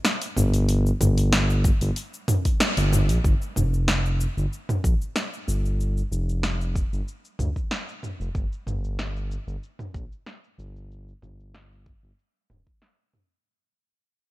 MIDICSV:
0, 0, Header, 1, 3, 480
1, 0, Start_track
1, 0, Key_signature, -2, "minor"
1, 0, Tempo, 638298
1, 517, Time_signature, 4, 2, 24, 8
1, 10757, End_track
2, 0, Start_track
2, 0, Title_t, "Analog synth bass"
2, 0, Program_c, 0, 38
2, 278, Note_on_c, 0, 31, 107
2, 689, Note_off_c, 0, 31, 0
2, 757, Note_on_c, 0, 31, 91
2, 1287, Note_off_c, 0, 31, 0
2, 1365, Note_on_c, 0, 31, 101
2, 1435, Note_off_c, 0, 31, 0
2, 2085, Note_on_c, 0, 31, 100
2, 2328, Note_on_c, 0, 34, 85
2, 2340, Note_off_c, 0, 31, 0
2, 2397, Note_off_c, 0, 34, 0
2, 2440, Note_on_c, 0, 31, 96
2, 2518, Note_off_c, 0, 31, 0
2, 2681, Note_on_c, 0, 29, 88
2, 3209, Note_off_c, 0, 29, 0
2, 3289, Note_on_c, 0, 31, 96
2, 3357, Note_off_c, 0, 31, 0
2, 3640, Note_on_c, 0, 34, 92
2, 3717, Note_off_c, 0, 34, 0
2, 4120, Note_on_c, 0, 31, 99
2, 4530, Note_off_c, 0, 31, 0
2, 4600, Note_on_c, 0, 29, 92
2, 5128, Note_off_c, 0, 29, 0
2, 5209, Note_on_c, 0, 31, 93
2, 5277, Note_off_c, 0, 31, 0
2, 5559, Note_on_c, 0, 38, 88
2, 5637, Note_off_c, 0, 38, 0
2, 6165, Note_on_c, 0, 29, 81
2, 6235, Note_off_c, 0, 29, 0
2, 6279, Note_on_c, 0, 31, 92
2, 6357, Note_off_c, 0, 31, 0
2, 6516, Note_on_c, 0, 31, 86
2, 7047, Note_off_c, 0, 31, 0
2, 7124, Note_on_c, 0, 31, 94
2, 7194, Note_off_c, 0, 31, 0
2, 7479, Note_on_c, 0, 34, 88
2, 7557, Note_off_c, 0, 34, 0
2, 7958, Note_on_c, 0, 31, 94
2, 8369, Note_off_c, 0, 31, 0
2, 8439, Note_on_c, 0, 31, 86
2, 8968, Note_off_c, 0, 31, 0
2, 9047, Note_on_c, 0, 31, 93
2, 9116, Note_off_c, 0, 31, 0
2, 9399, Note_on_c, 0, 26, 88
2, 9477, Note_off_c, 0, 26, 0
2, 10757, End_track
3, 0, Start_track
3, 0, Title_t, "Drums"
3, 35, Note_on_c, 9, 38, 96
3, 35, Note_on_c, 9, 46, 54
3, 40, Note_on_c, 9, 69, 42
3, 110, Note_off_c, 9, 38, 0
3, 110, Note_off_c, 9, 46, 0
3, 116, Note_off_c, 9, 69, 0
3, 162, Note_on_c, 9, 46, 53
3, 168, Note_on_c, 9, 69, 32
3, 237, Note_off_c, 9, 46, 0
3, 243, Note_off_c, 9, 69, 0
3, 275, Note_on_c, 9, 45, 62
3, 281, Note_on_c, 9, 69, 69
3, 350, Note_off_c, 9, 45, 0
3, 356, Note_off_c, 9, 69, 0
3, 403, Note_on_c, 9, 46, 45
3, 408, Note_on_c, 9, 69, 35
3, 478, Note_off_c, 9, 46, 0
3, 484, Note_off_c, 9, 69, 0
3, 516, Note_on_c, 9, 46, 54
3, 522, Note_on_c, 9, 69, 42
3, 591, Note_off_c, 9, 46, 0
3, 597, Note_off_c, 9, 69, 0
3, 650, Note_on_c, 9, 69, 28
3, 725, Note_off_c, 9, 69, 0
3, 757, Note_on_c, 9, 45, 66
3, 757, Note_on_c, 9, 46, 36
3, 763, Note_on_c, 9, 69, 81
3, 832, Note_off_c, 9, 45, 0
3, 832, Note_off_c, 9, 46, 0
3, 838, Note_off_c, 9, 69, 0
3, 884, Note_on_c, 9, 46, 46
3, 890, Note_on_c, 9, 69, 32
3, 960, Note_off_c, 9, 46, 0
3, 965, Note_off_c, 9, 69, 0
3, 997, Note_on_c, 9, 38, 111
3, 997, Note_on_c, 9, 46, 64
3, 1002, Note_on_c, 9, 69, 49
3, 1072, Note_off_c, 9, 38, 0
3, 1072, Note_off_c, 9, 46, 0
3, 1077, Note_off_c, 9, 69, 0
3, 1129, Note_on_c, 9, 69, 32
3, 1204, Note_off_c, 9, 69, 0
3, 1235, Note_on_c, 9, 46, 34
3, 1238, Note_on_c, 9, 36, 104
3, 1241, Note_on_c, 9, 69, 78
3, 1311, Note_off_c, 9, 46, 0
3, 1313, Note_off_c, 9, 36, 0
3, 1316, Note_off_c, 9, 69, 0
3, 1363, Note_on_c, 9, 46, 47
3, 1369, Note_on_c, 9, 69, 33
3, 1439, Note_off_c, 9, 46, 0
3, 1444, Note_off_c, 9, 69, 0
3, 1476, Note_on_c, 9, 46, 54
3, 1481, Note_on_c, 9, 69, 42
3, 1551, Note_off_c, 9, 46, 0
3, 1557, Note_off_c, 9, 69, 0
3, 1608, Note_on_c, 9, 69, 32
3, 1683, Note_off_c, 9, 69, 0
3, 1715, Note_on_c, 9, 45, 84
3, 1715, Note_on_c, 9, 46, 34
3, 1721, Note_on_c, 9, 69, 74
3, 1791, Note_off_c, 9, 45, 0
3, 1791, Note_off_c, 9, 46, 0
3, 1796, Note_off_c, 9, 69, 0
3, 1844, Note_on_c, 9, 46, 46
3, 1845, Note_on_c, 9, 36, 62
3, 1849, Note_on_c, 9, 69, 34
3, 1919, Note_off_c, 9, 46, 0
3, 1920, Note_off_c, 9, 36, 0
3, 1924, Note_off_c, 9, 69, 0
3, 1958, Note_on_c, 9, 38, 105
3, 1958, Note_on_c, 9, 46, 60
3, 1963, Note_on_c, 9, 69, 45
3, 2033, Note_off_c, 9, 38, 0
3, 2033, Note_off_c, 9, 46, 0
3, 2038, Note_off_c, 9, 69, 0
3, 2085, Note_on_c, 9, 46, 57
3, 2091, Note_on_c, 9, 69, 31
3, 2160, Note_off_c, 9, 46, 0
3, 2166, Note_off_c, 9, 69, 0
3, 2199, Note_on_c, 9, 45, 59
3, 2204, Note_on_c, 9, 69, 75
3, 2274, Note_off_c, 9, 45, 0
3, 2279, Note_off_c, 9, 69, 0
3, 2325, Note_on_c, 9, 46, 50
3, 2331, Note_on_c, 9, 69, 34
3, 2401, Note_off_c, 9, 46, 0
3, 2406, Note_off_c, 9, 69, 0
3, 2440, Note_on_c, 9, 36, 114
3, 2442, Note_on_c, 9, 69, 44
3, 2515, Note_off_c, 9, 36, 0
3, 2517, Note_off_c, 9, 69, 0
3, 2570, Note_on_c, 9, 69, 28
3, 2645, Note_off_c, 9, 69, 0
3, 2679, Note_on_c, 9, 45, 62
3, 2685, Note_on_c, 9, 69, 76
3, 2754, Note_off_c, 9, 45, 0
3, 2760, Note_off_c, 9, 69, 0
3, 2811, Note_on_c, 9, 69, 29
3, 2886, Note_off_c, 9, 69, 0
3, 2917, Note_on_c, 9, 38, 100
3, 2923, Note_on_c, 9, 69, 45
3, 2993, Note_off_c, 9, 38, 0
3, 2998, Note_off_c, 9, 69, 0
3, 3051, Note_on_c, 9, 69, 30
3, 3126, Note_off_c, 9, 69, 0
3, 3162, Note_on_c, 9, 69, 78
3, 3238, Note_off_c, 9, 69, 0
3, 3292, Note_on_c, 9, 69, 30
3, 3368, Note_off_c, 9, 69, 0
3, 3406, Note_on_c, 9, 69, 38
3, 3482, Note_off_c, 9, 69, 0
3, 3528, Note_on_c, 9, 45, 81
3, 3533, Note_on_c, 9, 69, 31
3, 3603, Note_off_c, 9, 45, 0
3, 3609, Note_off_c, 9, 69, 0
3, 3641, Note_on_c, 9, 36, 107
3, 3644, Note_on_c, 9, 69, 72
3, 3716, Note_off_c, 9, 36, 0
3, 3720, Note_off_c, 9, 69, 0
3, 3772, Note_on_c, 9, 69, 30
3, 3847, Note_off_c, 9, 69, 0
3, 3878, Note_on_c, 9, 38, 101
3, 3883, Note_on_c, 9, 69, 42
3, 3953, Note_off_c, 9, 38, 0
3, 3959, Note_off_c, 9, 69, 0
3, 4012, Note_on_c, 9, 69, 30
3, 4087, Note_off_c, 9, 69, 0
3, 4124, Note_on_c, 9, 69, 70
3, 4200, Note_off_c, 9, 69, 0
3, 4252, Note_on_c, 9, 69, 33
3, 4327, Note_off_c, 9, 69, 0
3, 4365, Note_on_c, 9, 69, 40
3, 4440, Note_off_c, 9, 69, 0
3, 4492, Note_on_c, 9, 69, 30
3, 4567, Note_off_c, 9, 69, 0
3, 4605, Note_on_c, 9, 69, 76
3, 4680, Note_off_c, 9, 69, 0
3, 4732, Note_on_c, 9, 69, 32
3, 4807, Note_off_c, 9, 69, 0
3, 4838, Note_on_c, 9, 38, 97
3, 4843, Note_on_c, 9, 69, 45
3, 4913, Note_off_c, 9, 38, 0
3, 4919, Note_off_c, 9, 69, 0
3, 4971, Note_on_c, 9, 69, 30
3, 5047, Note_off_c, 9, 69, 0
3, 5080, Note_on_c, 9, 36, 102
3, 5084, Note_on_c, 9, 69, 73
3, 5155, Note_off_c, 9, 36, 0
3, 5159, Note_off_c, 9, 69, 0
3, 5213, Note_on_c, 9, 69, 31
3, 5288, Note_off_c, 9, 69, 0
3, 5325, Note_on_c, 9, 69, 40
3, 5400, Note_off_c, 9, 69, 0
3, 5451, Note_on_c, 9, 69, 32
3, 5526, Note_off_c, 9, 69, 0
3, 5558, Note_on_c, 9, 45, 67
3, 5564, Note_on_c, 9, 69, 72
3, 5633, Note_off_c, 9, 45, 0
3, 5639, Note_off_c, 9, 69, 0
3, 5686, Note_on_c, 9, 36, 61
3, 5690, Note_on_c, 9, 69, 33
3, 5761, Note_off_c, 9, 36, 0
3, 5765, Note_off_c, 9, 69, 0
3, 5799, Note_on_c, 9, 38, 101
3, 5804, Note_on_c, 9, 69, 44
3, 5874, Note_off_c, 9, 38, 0
3, 5880, Note_off_c, 9, 69, 0
3, 5931, Note_on_c, 9, 69, 29
3, 6007, Note_off_c, 9, 69, 0
3, 6039, Note_on_c, 9, 45, 48
3, 6045, Note_on_c, 9, 69, 71
3, 6114, Note_off_c, 9, 45, 0
3, 6120, Note_off_c, 9, 69, 0
3, 6172, Note_on_c, 9, 69, 34
3, 6247, Note_off_c, 9, 69, 0
3, 6278, Note_on_c, 9, 36, 110
3, 6284, Note_on_c, 9, 69, 43
3, 6353, Note_off_c, 9, 36, 0
3, 6359, Note_off_c, 9, 69, 0
3, 6410, Note_on_c, 9, 69, 28
3, 6486, Note_off_c, 9, 69, 0
3, 6519, Note_on_c, 9, 45, 55
3, 6525, Note_on_c, 9, 69, 78
3, 6594, Note_off_c, 9, 45, 0
3, 6600, Note_off_c, 9, 69, 0
3, 6651, Note_on_c, 9, 69, 31
3, 6726, Note_off_c, 9, 69, 0
3, 6760, Note_on_c, 9, 38, 99
3, 6765, Note_on_c, 9, 69, 44
3, 6835, Note_off_c, 9, 38, 0
3, 6840, Note_off_c, 9, 69, 0
3, 6891, Note_on_c, 9, 69, 30
3, 6967, Note_off_c, 9, 69, 0
3, 7004, Note_on_c, 9, 69, 79
3, 7079, Note_off_c, 9, 69, 0
3, 7130, Note_on_c, 9, 69, 33
3, 7205, Note_off_c, 9, 69, 0
3, 7244, Note_on_c, 9, 69, 39
3, 7319, Note_off_c, 9, 69, 0
3, 7363, Note_on_c, 9, 45, 73
3, 7369, Note_on_c, 9, 69, 32
3, 7439, Note_off_c, 9, 45, 0
3, 7444, Note_off_c, 9, 69, 0
3, 7478, Note_on_c, 9, 36, 101
3, 7484, Note_on_c, 9, 69, 73
3, 7553, Note_off_c, 9, 36, 0
3, 7559, Note_off_c, 9, 69, 0
3, 7612, Note_on_c, 9, 69, 32
3, 7687, Note_off_c, 9, 69, 0
3, 7719, Note_on_c, 9, 38, 93
3, 7724, Note_on_c, 9, 69, 42
3, 7794, Note_off_c, 9, 38, 0
3, 7800, Note_off_c, 9, 69, 0
3, 7852, Note_on_c, 9, 69, 29
3, 7927, Note_off_c, 9, 69, 0
3, 7966, Note_on_c, 9, 69, 65
3, 8041, Note_off_c, 9, 69, 0
3, 8093, Note_on_c, 9, 69, 33
3, 8168, Note_off_c, 9, 69, 0
3, 8207, Note_on_c, 9, 69, 38
3, 8283, Note_off_c, 9, 69, 0
3, 8333, Note_on_c, 9, 69, 27
3, 8408, Note_off_c, 9, 69, 0
3, 8440, Note_on_c, 9, 45, 54
3, 8446, Note_on_c, 9, 69, 73
3, 8515, Note_off_c, 9, 45, 0
3, 8521, Note_off_c, 9, 69, 0
3, 8573, Note_on_c, 9, 69, 31
3, 8648, Note_off_c, 9, 69, 0
3, 8681, Note_on_c, 9, 38, 93
3, 8687, Note_on_c, 9, 69, 43
3, 8756, Note_off_c, 9, 38, 0
3, 8762, Note_off_c, 9, 69, 0
3, 8813, Note_on_c, 9, 69, 28
3, 8888, Note_off_c, 9, 69, 0
3, 8920, Note_on_c, 9, 36, 101
3, 8925, Note_on_c, 9, 69, 70
3, 8995, Note_off_c, 9, 36, 0
3, 9001, Note_off_c, 9, 69, 0
3, 9052, Note_on_c, 9, 69, 28
3, 9128, Note_off_c, 9, 69, 0
3, 9166, Note_on_c, 9, 69, 41
3, 9241, Note_off_c, 9, 69, 0
3, 9292, Note_on_c, 9, 69, 29
3, 9367, Note_off_c, 9, 69, 0
3, 9399, Note_on_c, 9, 45, 72
3, 9405, Note_on_c, 9, 69, 70
3, 9475, Note_off_c, 9, 45, 0
3, 9480, Note_off_c, 9, 69, 0
3, 9526, Note_on_c, 9, 36, 56
3, 9601, Note_off_c, 9, 36, 0
3, 9639, Note_on_c, 9, 38, 88
3, 9714, Note_off_c, 9, 38, 0
3, 9878, Note_on_c, 9, 45, 49
3, 9883, Note_on_c, 9, 69, 66
3, 9953, Note_off_c, 9, 45, 0
3, 9959, Note_off_c, 9, 69, 0
3, 10757, End_track
0, 0, End_of_file